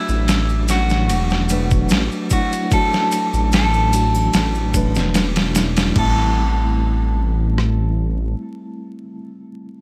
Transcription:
Already playing: F#3 A3 D4 E4 F#4
0.09 A1, maracas
0.28 snare, ride, maracas
0.49 maracas
0.68 F#3 A3 D4 F#4, snare, ride, maracas
0.89 snare, maracas
1.09 E1, ride, maracas
1.30 snare, maracas
1.49 F#3 A3 D4 B4, ride, maracas
1.70 kick, maracas
1.89 A1, snare, ride, maracas
2.12 maracas
2.30 F#3 A3 D4 E4 F#4, kick, ride, maracas
2.53 ride, maracas
2.71 F#3 A3 D4 F#4 A4, kick, ride, maracas
2.93 snare, maracas
3.12 ride, maracas
3.33 A1, maracas
3.52 A4, snare, ride, maracas
3.74 maracas
3.93 F#3 A3 D4 F#4, ride, maracas
4.15 triangle, maracas
4.33 A1, snare, ride, maracas
4.55 maracas
4.74 F#3 A3 D4 B4, kick, ride, maracas
4.95 E1, snare, maracas
5.14 snare, ride, maracas
5.36 snare, ride, maracas
5.55 F#3 A3 D4 E4, snare, ride, maracas
5.77 snare, ride, maracas
5.94 A1 G3 A3, kick, crash
5.98 C4 E4 A4
7.58 cross-stick

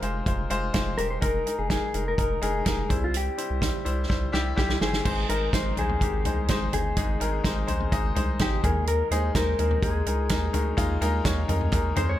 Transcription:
Already playing: G#3 F4 A#4 C5
0.02 F1 G#3 F4 C5, closed hi-hat
0.26 F1 G#3 F4 C5, kick, closed hi-hat
0.50 F1 G#3 F4 C5, closed hi-hat
0.74 F1 G#3 F4 C5, kick, snare, closed hi-hat
0.98 E1 G#3 F4 G4 A#4, closed hi-hat
1.10 C5
1.21 F1 G#3 D#4 A#4, kick, closed hi-hat
1.46 G#3 D#4 A#4, closed hi-hat
1.59 F1 G#4
1.70 G#3 D#4 G#4 A#4, kick, snare, closed hi-hat
1.94 F1 G#3 D#4 A#4, closed hi-hat
2.08 A#4
2.18 F1 G#3 D#4 A#4, kick, closed hi-hat
2.42 F1 G#3 D#4 G#4 A#4, closed hi-hat
2.65 F1 G#3 D#4 A#4, kick, snare, closed hi-hat
2.89 C2 C3 G3 E4 C5, kick, closed hi-hat
3.04 F4
3.14 G4, closed hi-hat
3.37 G3 E4 C5, closed hi-hat
3.50 C2
3.61 G3 E4 C5, kick, snare, closed hi-hat
3.85 C2 G3 E4 C5, closed hi-hat
4.08 C2 G3 E4 C5, kick, snare
4.32 C2 G3 E4 G4, snare
4.56 C2 G3 E4 G4, kick, snare
4.69 snare
4.81 G1 G3 E4 G#4 C5, snare
4.93 snare
5.05 G#1 G#2 G#3 D#4 C5, kick, crash
5.29 G#1 G#3 D#4 A#4, closed hi-hat
5.53 G#1 G#3 D#4 C5, kick, snare, closed hi-hat
5.77 A#1 G#3 D#4 G#4 C5, closed hi-hat, floor tom
5.89 floor tom
6.01 G#1 G#3 D#4 G4, kick, closed hi-hat
6.25 C2 G#3 D#4 C5, closed hi-hat, floor tom
6.48 G#1 G#3 D#4 C5, kick, snare, closed hi-hat
6.72 G1 G#3 D#4 G#4 C5, closed hi-hat, floor tom
6.97 G#1 G#2 G#3 D#4 G#4, kick, closed hi-hat
7.20 G#1 G#3 D#4 A#4, closed hi-hat
7.44 G#1 G#3 D#4 C5, kick, snare, closed hi-hat
7.67 A#1 G#3 D#4 C5, closed hi-hat, floor tom
7.80 floor tom
7.92 G#1 G#3 D#4 D#5, kick, closed hi-hat
8.15 C2 G#3 D#4 C5, closed hi-hat, floor tom
8.39 G#1 G#3 D#4 G4 C5, kick, snare, closed hi-hat
8.64 D#2 D#3 G#3 D#4 G#4 A#4, kick, closed hi-hat, floor tom
8.87 A#4, closed hi-hat
9.11 D#2 G#3 D#4 G#4 C5, closed hi-hat
9.35 D#2 G#3 D#4 A#4 C5, kick, snare, clap, closed hi-hat
9.59 D#2 G#3 D#4 A#4, closed hi-hat, floor tom
9.71 floor tom
9.82 D#2 G#3 D#4 G#4 A#4, kick, closed hi-hat
10.06 C#2 G#3 D#4 A#4, closed hi-hat
10.29 D#2 G#3 D#4 A#4, kick, snare, clap, closed hi-hat
10.53 D2 D#3 G#3 D#4 A#4, closed hi-hat, floor tom
10.77 D#2 G#3 D#4 F4, kick, closed hi-hat
11.01 D#2 G#3 D#4 A#4, closed hi-hat
11.24 D#2 G#3 D#4 C#5, kick, snare, clap, closed hi-hat
11.30 G4
11.48 F2 G#3 D#4 A#4, closed hi-hat, floor tom
11.61 floor tom
11.72 D#2 G#3 D#4 A#4, kick, clap, closed hi-hat
11.96 F2 G#3 D#4 C5, closed hi-hat, floor tom
12.09 C#5

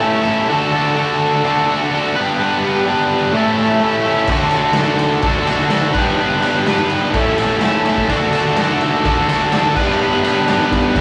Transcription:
0.00 A3 C#4 E4 A4
0.23 E4 A4
0.27 C#4
0.48 D3 D4 F#4
0.53 A4
0.72 F#4 A4
0.77 D4
0.95 D3 D4 F#4
1.00 A4
1.44 D3 D4 F#4
1.48 A4
1.67 F#4 A4
1.71 D4
1.91 D3 D4 F#4 A4
2.15 B3 D4 B4
2.20 G3
2.38 G3 B3 D4
2.43 B4
2.63 B3 B4
2.67 D4
2.86 G3 B3 D4
2.91 B4
3.32 A2 A3 C#4 E4
3.37 A4
3.57 E4 A4
3.62 C#4
3.80 A3 C#4 E4
3.84 A4
4.04 E4 A4
4.09 C#4
4.27 D3 D4 F#4, kick, crash
4.32 A4
4.51 F#4 A4, ride
4.56 D4
4.73 D3 D4, snare, ride
4.79 F#4 A4
4.99 ride
5.22 D3 D4 F#4, kick, ride
5.27 A4
5.47 F#4 A4, snare, ride
5.51 D4
5.70 D3 D4 F#4, snare, ride
5.74 A4
5.93 B3 D4 B4, kick, crash
5.98 G3
6.18 G3 B3 D4 B4
6.42 B3 B4, ride
6.47 D4
6.66 G3 B3 D4 B4, snare, ride
6.90 ride
7.13 A2 A3 C#4 E4, kick, ride
7.18 A4
7.38 E4 A4, snare, ride
7.42 C#4
7.61 A3 C#4, snare, ride
7.66 E4 A4
7.85 E4 A4, ride
7.90 C#4
7.98 kick
8.08 D3 D4 F#4, kick, ride
8.12 A4
8.33 F#4 A4, ride
8.37 D4
8.57 D3 D4 F#4, snare, ride
8.62 A4
8.81 ride
9.05 D3 D4 F#4, kick, ride
9.09 A4
9.29 F#4 A4, ride
9.33 D4
9.51 D3 D4 F#4, snare, ride
9.56 A4
9.76 B3 D4 B4, kick, crash
9.80 G3
9.99 G3 B3 D4
10.03 B4
10.24 B3 B4, ride
10.28 D4
10.48 G3 B3 D4, snare, ride
10.52 B4
10.72 kick, ride
10.95 E2 E3 G#3, kick, ride

